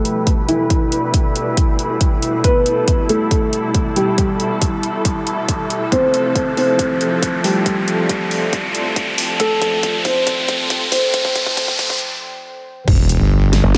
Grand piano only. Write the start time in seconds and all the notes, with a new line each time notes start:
Already playing: A3 A4
0.48 E3 E4
2.44 B3 B4
3.09 A3 A4
3.96 G3 G4
5.92 C4 C5
6.57 C4 C5
7.44 G3 G4
9.40 A3 A4
10.05 C4 C5
10.92 C4 C5